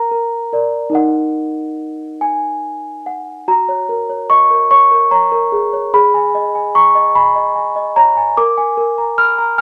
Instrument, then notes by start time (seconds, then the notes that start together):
celesta
Already playing: A#4 A#5
0.11 A#4
0.53 A#4 D5
0.90 D#4 A#4 D#5
0.95 F#5
2.21 G#5
3.06 F#5
3.48 F#4 A#5
3.69 C#5
3.89 A#4
4.09 C#5
4.30 D#5 C#6
4.51 A#4
4.71 C#5 C#6
4.91 A#4
5.11 C#5 A#5
5.32 A#4
5.52 G#4
5.73 C#5
5.94 G#4 B5
6.14 G#5
6.35 D#5
6.55 G#5
6.75 A#5 C#6
6.95 D#5
7.15 G#5 B5
7.36 D#5
7.55 G#5
7.76 D#5
7.96 C#5 A#5
8.17 G#5
8.37 A#4 D6
8.57 G#5
8.77 A#4
8.98 A#5
9.18 B5 F6
9.38 A#5